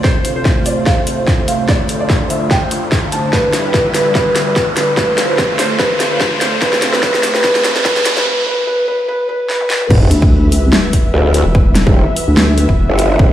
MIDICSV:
0, 0, Header, 1, 8, 480
1, 0, Start_track
1, 0, Tempo, 410959
1, 49, Time_signature, 4, 2, 24, 8
1, 15567, End_track
2, 0, Start_track
2, 0, Title_t, "Felt piano"
2, 0, Program_c, 0, 0
2, 48, Note_on_c, 0, 72, 94
2, 308, Note_off_c, 0, 72, 0
2, 419, Note_on_c, 0, 72, 94
2, 676, Note_off_c, 0, 72, 0
2, 768, Note_on_c, 0, 74, 88
2, 946, Note_off_c, 0, 74, 0
2, 1007, Note_on_c, 0, 77, 93
2, 1267, Note_off_c, 0, 77, 0
2, 1727, Note_on_c, 0, 77, 87
2, 1906, Note_off_c, 0, 77, 0
2, 1967, Note_on_c, 0, 74, 95
2, 2227, Note_off_c, 0, 74, 0
2, 2340, Note_on_c, 0, 74, 87
2, 2596, Note_off_c, 0, 74, 0
2, 2688, Note_on_c, 0, 76, 89
2, 2867, Note_off_c, 0, 76, 0
2, 2928, Note_on_c, 0, 79, 93
2, 3187, Note_off_c, 0, 79, 0
2, 3647, Note_on_c, 0, 81, 89
2, 3826, Note_off_c, 0, 81, 0
2, 3888, Note_on_c, 0, 71, 91
2, 4148, Note_off_c, 0, 71, 0
2, 4260, Note_on_c, 0, 71, 87
2, 4516, Note_off_c, 0, 71, 0
2, 4609, Note_on_c, 0, 71, 85
2, 4787, Note_off_c, 0, 71, 0
2, 4848, Note_on_c, 0, 71, 89
2, 5108, Note_off_c, 0, 71, 0
2, 5219, Note_on_c, 0, 71, 85
2, 5475, Note_off_c, 0, 71, 0
2, 5566, Note_on_c, 0, 71, 84
2, 5746, Note_off_c, 0, 71, 0
2, 5806, Note_on_c, 0, 71, 89
2, 6067, Note_off_c, 0, 71, 0
2, 6178, Note_on_c, 0, 71, 89
2, 6435, Note_off_c, 0, 71, 0
2, 6528, Note_on_c, 0, 72, 89
2, 6707, Note_off_c, 0, 72, 0
2, 6770, Note_on_c, 0, 71, 98
2, 7028, Note_off_c, 0, 71, 0
2, 7141, Note_on_c, 0, 71, 84
2, 7396, Note_off_c, 0, 71, 0
2, 7490, Note_on_c, 0, 72, 83
2, 7667, Note_off_c, 0, 72, 0
2, 7729, Note_on_c, 0, 71, 96
2, 7988, Note_off_c, 0, 71, 0
2, 8100, Note_on_c, 0, 71, 90
2, 8191, Note_off_c, 0, 71, 0
2, 8208, Note_on_c, 0, 71, 100
2, 8468, Note_off_c, 0, 71, 0
2, 8580, Note_on_c, 0, 71, 89
2, 8671, Note_off_c, 0, 71, 0
2, 8690, Note_on_c, 0, 71, 103
2, 8949, Note_off_c, 0, 71, 0
2, 9061, Note_on_c, 0, 71, 89
2, 9152, Note_off_c, 0, 71, 0
2, 9170, Note_on_c, 0, 71, 97
2, 9429, Note_off_c, 0, 71, 0
2, 9542, Note_on_c, 0, 71, 97
2, 9632, Note_off_c, 0, 71, 0
2, 9650, Note_on_c, 0, 71, 97
2, 9872, Note_off_c, 0, 71, 0
2, 9890, Note_on_c, 0, 71, 99
2, 10112, Note_off_c, 0, 71, 0
2, 10130, Note_on_c, 0, 71, 103
2, 10352, Note_off_c, 0, 71, 0
2, 10371, Note_on_c, 0, 71, 103
2, 10592, Note_off_c, 0, 71, 0
2, 10611, Note_on_c, 0, 71, 106
2, 10832, Note_off_c, 0, 71, 0
2, 10849, Note_on_c, 0, 71, 103
2, 11072, Note_off_c, 0, 71, 0
2, 11089, Note_on_c, 0, 71, 104
2, 11312, Note_off_c, 0, 71, 0
2, 11330, Note_on_c, 0, 71, 105
2, 11552, Note_off_c, 0, 71, 0
2, 15567, End_track
3, 0, Start_track
3, 0, Title_t, "Analog synth pad"
3, 0, Program_c, 1, 89
3, 0, Note_on_c, 1, 57, 77
3, 0, Note_on_c, 1, 72, 90
3, 48, Note_on_c, 1, 48, 80
3, 48, Note_on_c, 1, 65, 77
3, 1949, Note_off_c, 1, 48, 0
3, 1949, Note_off_c, 1, 65, 0
3, 1967, Note_on_c, 1, 50, 82
3, 1967, Note_on_c, 1, 65, 77
3, 3842, Note_off_c, 1, 72, 0
3, 3843, Note_off_c, 1, 57, 0
3, 3869, Note_off_c, 1, 65, 0
3, 3888, Note_on_c, 1, 55, 74
3, 3888, Note_on_c, 1, 64, 76
3, 3888, Note_on_c, 1, 71, 93
3, 5789, Note_off_c, 1, 55, 0
3, 5789, Note_off_c, 1, 64, 0
3, 5789, Note_off_c, 1, 71, 0
3, 5807, Note_on_c, 1, 65, 78
3, 5807, Note_on_c, 1, 72, 95
3, 5808, Note_on_c, 1, 57, 76
3, 7681, Note_off_c, 1, 50, 0
3, 7709, Note_off_c, 1, 57, 0
3, 7728, Note_on_c, 1, 48, 85
3, 7729, Note_on_c, 1, 57, 77
3, 9609, Note_off_c, 1, 65, 0
3, 9610, Note_off_c, 1, 72, 0
3, 9629, Note_off_c, 1, 48, 0
3, 9630, Note_off_c, 1, 57, 0
3, 11567, Note_on_c, 1, 71, 76
3, 11568, Note_on_c, 1, 52, 88
3, 11568, Note_on_c, 1, 59, 77
3, 11568, Note_on_c, 1, 76, 96
3, 15567, Note_off_c, 1, 52, 0
3, 15567, Note_off_c, 1, 59, 0
3, 15567, Note_off_c, 1, 71, 0
3, 15567, Note_off_c, 1, 76, 0
3, 15567, End_track
4, 0, Start_track
4, 0, Title_t, "Wobble bass"
4, 0, Program_c, 2, 39
4, 11809, Note_on_c, 2, 38, 102
4, 12311, Note_off_c, 2, 38, 0
4, 12311, Note_on_c, 2, 37, 102
4, 12511, Note_off_c, 2, 37, 0
4, 13380, Note_on_c, 2, 28, 98
4, 13839, Note_off_c, 2, 28, 0
4, 14340, Note_on_c, 2, 38, 97
4, 14799, Note_off_c, 2, 38, 0
4, 14821, Note_on_c, 2, 28, 98
4, 15040, Note_off_c, 2, 28, 0
4, 15567, End_track
5, 0, Start_track
5, 0, Title_t, "Wobble bass"
5, 0, Program_c, 3, 39
5, 11569, Note_on_c, 3, 28, 97
5, 11792, Note_off_c, 3, 28, 0
5, 13009, Note_on_c, 3, 38, 99
5, 13359, Note_off_c, 3, 38, 0
5, 13860, Note_on_c, 3, 28, 97
5, 14079, Note_off_c, 3, 28, 0
5, 15061, Note_on_c, 3, 31, 97
5, 15392, Note_off_c, 3, 31, 0
5, 15410, Note_on_c, 3, 28, 94
5, 15567, Note_off_c, 3, 28, 0
5, 15567, End_track
6, 0, Start_track
6, 0, Title_t, "Riser"
6, 0, Program_c, 4, 103
6, 0, Note_on_c, 4, 60, 80
6, 9649, Note_off_c, 4, 60, 0
6, 15567, End_track
7, 0, Start_track
7, 0, Title_t, "Sub drop"
7, 0, Program_c, 5, 103
7, 11569, Note_on_c, 5, 60, 81
7, 13489, Note_off_c, 5, 60, 0
7, 15567, End_track
8, 0, Start_track
8, 0, Title_t, "Drums"
8, 49, Note_on_c, 9, 36, 93
8, 49, Note_on_c, 9, 38, 58
8, 165, Note_off_c, 9, 36, 0
8, 166, Note_off_c, 9, 38, 0
8, 289, Note_on_c, 9, 42, 76
8, 406, Note_off_c, 9, 42, 0
8, 528, Note_on_c, 9, 38, 59
8, 529, Note_on_c, 9, 36, 99
8, 645, Note_off_c, 9, 36, 0
8, 645, Note_off_c, 9, 38, 0
8, 768, Note_on_c, 9, 46, 89
8, 885, Note_off_c, 9, 46, 0
8, 1008, Note_on_c, 9, 36, 97
8, 1008, Note_on_c, 9, 38, 63
8, 1125, Note_off_c, 9, 36, 0
8, 1125, Note_off_c, 9, 38, 0
8, 1248, Note_on_c, 9, 42, 78
8, 1365, Note_off_c, 9, 42, 0
8, 1488, Note_on_c, 9, 36, 93
8, 1488, Note_on_c, 9, 38, 60
8, 1605, Note_off_c, 9, 36, 0
8, 1605, Note_off_c, 9, 38, 0
8, 1728, Note_on_c, 9, 42, 82
8, 1845, Note_off_c, 9, 42, 0
8, 1968, Note_on_c, 9, 36, 96
8, 1968, Note_on_c, 9, 38, 62
8, 2085, Note_off_c, 9, 36, 0
8, 2085, Note_off_c, 9, 38, 0
8, 2208, Note_on_c, 9, 42, 76
8, 2325, Note_off_c, 9, 42, 0
8, 2448, Note_on_c, 9, 36, 97
8, 2448, Note_on_c, 9, 38, 65
8, 2564, Note_off_c, 9, 38, 0
8, 2565, Note_off_c, 9, 36, 0
8, 2688, Note_on_c, 9, 46, 82
8, 2805, Note_off_c, 9, 46, 0
8, 2927, Note_on_c, 9, 38, 68
8, 2928, Note_on_c, 9, 36, 92
8, 3044, Note_off_c, 9, 38, 0
8, 3045, Note_off_c, 9, 36, 0
8, 3167, Note_on_c, 9, 42, 74
8, 3284, Note_off_c, 9, 42, 0
8, 3408, Note_on_c, 9, 36, 93
8, 3408, Note_on_c, 9, 38, 70
8, 3524, Note_off_c, 9, 38, 0
8, 3525, Note_off_c, 9, 36, 0
8, 3648, Note_on_c, 9, 42, 78
8, 3764, Note_off_c, 9, 42, 0
8, 3888, Note_on_c, 9, 36, 91
8, 3888, Note_on_c, 9, 38, 74
8, 4004, Note_off_c, 9, 38, 0
8, 4005, Note_off_c, 9, 36, 0
8, 4128, Note_on_c, 9, 38, 75
8, 4128, Note_on_c, 9, 42, 73
8, 4245, Note_off_c, 9, 38, 0
8, 4245, Note_off_c, 9, 42, 0
8, 4368, Note_on_c, 9, 36, 98
8, 4368, Note_on_c, 9, 38, 76
8, 4485, Note_off_c, 9, 36, 0
8, 4485, Note_off_c, 9, 38, 0
8, 4607, Note_on_c, 9, 38, 73
8, 4607, Note_on_c, 9, 46, 86
8, 4724, Note_off_c, 9, 38, 0
8, 4724, Note_off_c, 9, 46, 0
8, 4847, Note_on_c, 9, 38, 76
8, 4848, Note_on_c, 9, 36, 96
8, 4964, Note_off_c, 9, 38, 0
8, 4965, Note_off_c, 9, 36, 0
8, 5088, Note_on_c, 9, 38, 78
8, 5088, Note_on_c, 9, 42, 74
8, 5204, Note_off_c, 9, 38, 0
8, 5204, Note_off_c, 9, 42, 0
8, 5327, Note_on_c, 9, 38, 76
8, 5328, Note_on_c, 9, 36, 94
8, 5444, Note_off_c, 9, 38, 0
8, 5445, Note_off_c, 9, 36, 0
8, 5567, Note_on_c, 9, 38, 81
8, 5567, Note_on_c, 9, 42, 76
8, 5684, Note_off_c, 9, 38, 0
8, 5684, Note_off_c, 9, 42, 0
8, 5808, Note_on_c, 9, 36, 92
8, 5808, Note_on_c, 9, 38, 81
8, 5924, Note_off_c, 9, 38, 0
8, 5925, Note_off_c, 9, 36, 0
8, 6048, Note_on_c, 9, 38, 85
8, 6048, Note_on_c, 9, 42, 78
8, 6165, Note_off_c, 9, 38, 0
8, 6165, Note_off_c, 9, 42, 0
8, 6288, Note_on_c, 9, 36, 94
8, 6288, Note_on_c, 9, 38, 80
8, 6405, Note_off_c, 9, 36, 0
8, 6405, Note_off_c, 9, 38, 0
8, 6528, Note_on_c, 9, 38, 89
8, 6528, Note_on_c, 9, 46, 89
8, 6645, Note_off_c, 9, 38, 0
8, 6645, Note_off_c, 9, 46, 0
8, 6768, Note_on_c, 9, 36, 98
8, 6768, Note_on_c, 9, 38, 86
8, 6885, Note_off_c, 9, 36, 0
8, 6885, Note_off_c, 9, 38, 0
8, 7008, Note_on_c, 9, 38, 84
8, 7008, Note_on_c, 9, 42, 71
8, 7125, Note_off_c, 9, 38, 0
8, 7125, Note_off_c, 9, 42, 0
8, 7248, Note_on_c, 9, 36, 96
8, 7248, Note_on_c, 9, 38, 89
8, 7365, Note_off_c, 9, 36, 0
8, 7365, Note_off_c, 9, 38, 0
8, 7487, Note_on_c, 9, 38, 87
8, 7487, Note_on_c, 9, 42, 77
8, 7604, Note_off_c, 9, 38, 0
8, 7604, Note_off_c, 9, 42, 0
8, 7727, Note_on_c, 9, 38, 89
8, 7728, Note_on_c, 9, 36, 95
8, 7844, Note_off_c, 9, 38, 0
8, 7845, Note_off_c, 9, 36, 0
8, 7859, Note_on_c, 9, 38, 81
8, 7967, Note_off_c, 9, 38, 0
8, 7967, Note_on_c, 9, 38, 93
8, 7967, Note_on_c, 9, 42, 80
8, 8084, Note_off_c, 9, 38, 0
8, 8084, Note_off_c, 9, 42, 0
8, 8099, Note_on_c, 9, 38, 78
8, 8208, Note_off_c, 9, 38, 0
8, 8208, Note_on_c, 9, 36, 99
8, 8208, Note_on_c, 9, 38, 97
8, 8325, Note_off_c, 9, 36, 0
8, 8325, Note_off_c, 9, 38, 0
8, 8339, Note_on_c, 9, 38, 79
8, 8448, Note_off_c, 9, 38, 0
8, 8448, Note_on_c, 9, 38, 94
8, 8448, Note_on_c, 9, 46, 94
8, 8565, Note_off_c, 9, 38, 0
8, 8565, Note_off_c, 9, 46, 0
8, 8579, Note_on_c, 9, 38, 84
8, 8688, Note_off_c, 9, 38, 0
8, 8688, Note_on_c, 9, 36, 98
8, 8688, Note_on_c, 9, 38, 97
8, 8804, Note_off_c, 9, 38, 0
8, 8805, Note_off_c, 9, 36, 0
8, 8819, Note_on_c, 9, 38, 87
8, 8928, Note_off_c, 9, 38, 0
8, 8928, Note_on_c, 9, 38, 93
8, 8928, Note_on_c, 9, 42, 75
8, 9045, Note_off_c, 9, 38, 0
8, 9045, Note_off_c, 9, 42, 0
8, 9059, Note_on_c, 9, 38, 86
8, 9168, Note_off_c, 9, 38, 0
8, 9168, Note_on_c, 9, 36, 99
8, 9168, Note_on_c, 9, 38, 96
8, 9285, Note_off_c, 9, 36, 0
8, 9285, Note_off_c, 9, 38, 0
8, 9299, Note_on_c, 9, 38, 88
8, 9408, Note_off_c, 9, 38, 0
8, 9408, Note_on_c, 9, 38, 104
8, 9408, Note_on_c, 9, 42, 81
8, 9525, Note_off_c, 9, 38, 0
8, 9525, Note_off_c, 9, 42, 0
8, 9539, Note_on_c, 9, 38, 90
8, 9656, Note_off_c, 9, 38, 0
8, 11088, Note_on_c, 9, 38, 59
8, 11205, Note_off_c, 9, 38, 0
8, 11220, Note_on_c, 9, 48, 59
8, 11329, Note_on_c, 9, 38, 89
8, 11337, Note_off_c, 9, 48, 0
8, 11445, Note_off_c, 9, 38, 0
8, 11459, Note_on_c, 9, 45, 86
8, 11568, Note_on_c, 9, 49, 99
8, 11569, Note_on_c, 9, 36, 115
8, 11576, Note_off_c, 9, 45, 0
8, 11685, Note_off_c, 9, 49, 0
8, 11686, Note_off_c, 9, 36, 0
8, 11808, Note_on_c, 9, 42, 81
8, 11925, Note_off_c, 9, 42, 0
8, 11940, Note_on_c, 9, 36, 102
8, 12057, Note_off_c, 9, 36, 0
8, 12289, Note_on_c, 9, 46, 96
8, 12405, Note_off_c, 9, 46, 0
8, 12528, Note_on_c, 9, 38, 121
8, 12645, Note_off_c, 9, 38, 0
8, 12768, Note_on_c, 9, 42, 77
8, 12769, Note_on_c, 9, 36, 61
8, 12885, Note_off_c, 9, 42, 0
8, 12886, Note_off_c, 9, 36, 0
8, 13249, Note_on_c, 9, 42, 85
8, 13365, Note_off_c, 9, 42, 0
8, 13489, Note_on_c, 9, 36, 115
8, 13606, Note_off_c, 9, 36, 0
8, 13728, Note_on_c, 9, 38, 64
8, 13728, Note_on_c, 9, 42, 82
8, 13845, Note_off_c, 9, 38, 0
8, 13845, Note_off_c, 9, 42, 0
8, 13860, Note_on_c, 9, 36, 104
8, 13977, Note_off_c, 9, 36, 0
8, 14209, Note_on_c, 9, 46, 93
8, 14326, Note_off_c, 9, 46, 0
8, 14449, Note_on_c, 9, 38, 125
8, 14565, Note_off_c, 9, 38, 0
8, 14689, Note_on_c, 9, 42, 79
8, 14806, Note_off_c, 9, 42, 0
8, 14821, Note_on_c, 9, 36, 64
8, 14937, Note_off_c, 9, 36, 0
8, 15169, Note_on_c, 9, 42, 81
8, 15286, Note_off_c, 9, 42, 0
8, 15409, Note_on_c, 9, 36, 117
8, 15526, Note_off_c, 9, 36, 0
8, 15567, End_track
0, 0, End_of_file